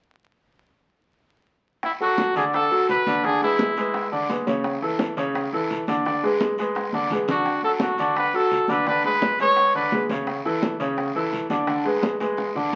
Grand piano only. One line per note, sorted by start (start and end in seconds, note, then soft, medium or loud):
2.00 2.29 F#3 medium
2.00 2.30 F#4 medium
2.00 2.30 A4 medium
2.36 2.65 D3 medium
2.36 2.65 D4 medium
2.36 2.65 D5 medium
2.71 3.00 F#3 medium
2.71 3.00 F#4 medium
2.71 3.00 A4 medium
3.07 3.21 D3 medium
3.07 3.21 D4 medium
3.07 3.21 D5 medium
3.25 3.39 D3 medium
3.25 3.39 D4 medium
3.25 3.39 D5 medium
3.42 3.71 G#3 medium
3.42 3.71 G#4 medium
3.42 3.71 B4 medium
3.77 4.06 G#3 medium
3.77 4.06 G#4 medium
3.77 4.06 B4 medium
4.12 4.26 D3 medium
4.12 4.26 D4 medium
4.12 4.27 D5 medium
4.29 4.44 G#3 medium
4.29 4.44 G#4 medium
4.29 4.44 B4 medium
4.47 4.76 C#3 medium
4.47 4.76 C#4 medium
4.47 4.76 C#5 medium
4.82 5.11 E3 medium
4.82 5.11 E4 medium
4.82 5.11 A4 medium
5.17 5.46 C#3 medium
5.17 5.46 C#4 medium
5.17 5.46 C#5 medium
5.53 5.82 E3 medium
5.53 5.82 E4 medium
5.53 5.82 A4 medium
5.88 6.02 D3 medium
5.88 6.02 D4 medium
5.88 6.03 D5 medium
6.06 6.20 D3 medium
6.06 6.20 D4 medium
6.06 6.20 D5 medium
6.23 6.52 G#3 medium
6.23 6.52 G#4 medium
6.23 6.52 B4 medium
6.59 6.87 G#3 medium
6.59 6.88 G#4 medium
6.59 6.88 B4 medium
6.94 7.08 D3 medium
6.94 7.08 D4 medium
6.94 7.08 D5 medium
7.12 7.26 G#3 medium
7.12 7.26 G#4 medium
7.12 7.26 B4 medium
7.29 7.57 D3 medium
7.29 7.58 D4 medium
7.29 7.58 D5 medium
7.64 7.93 F#3 medium
7.64 7.93 F#4 medium
7.64 7.93 A4 medium
7.99 8.28 D3 medium
7.99 8.28 D4 medium
7.99 8.28 D5 medium
8.34 8.63 F#3 medium
8.34 8.63 F#4 medium
8.34 8.63 A4 medium
8.69 8.83 D3 medium
8.69 8.83 D4 medium
8.69 8.84 D5 medium
8.87 9.01 D3 medium
8.87 9.01 D4 medium
8.87 9.01 D5 medium
9.05 9.34 G#3 medium
9.05 9.34 G#4 medium
9.05 9.34 B4 medium
9.40 9.68 G#3 medium
9.40 9.69 G#4 medium
9.40 9.69 B4 medium
9.75 9.89 D3 medium
9.75 9.89 D4 medium
9.75 9.89 D5 medium
9.93 10.07 G#3 medium
9.93 10.07 G#4 medium
9.93 10.07 B4 medium
10.10 10.39 C#3 medium
10.10 10.39 C#4 medium
10.10 10.39 C#5 medium
10.45 10.74 E3 medium
10.45 10.74 E4 medium
10.45 10.74 A4 medium
10.80 11.09 C#3 medium
10.80 11.09 C#4 medium
10.80 11.09 C#5 medium
11.15 11.44 E3 medium
11.15 11.44 E4 medium
11.15 11.44 A4 medium
11.50 11.64 D3 medium
11.50 11.65 D4 medium
11.50 11.65 D5 medium
11.67 11.82 D3 medium
11.67 11.82 D4 medium
11.67 11.82 D5 medium
11.85 12.14 G#3 medium
11.85 12.14 G#4 medium
11.85 12.14 B4 medium
12.20 12.49 G#3 medium
12.20 12.49 G#4 medium
12.20 12.49 B4 medium
12.55 12.70 D3 medium
12.55 12.70 D4 medium
12.55 12.70 D5 medium